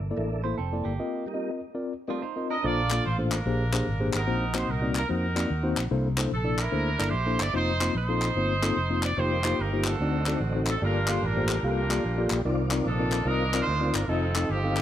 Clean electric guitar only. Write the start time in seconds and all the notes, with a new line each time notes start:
0.44 E4 C5
0.58 C4 A4
0.85 A#3 G4
2.10 A3 F4
2.22 D#4 C5
2.50 D4 A#4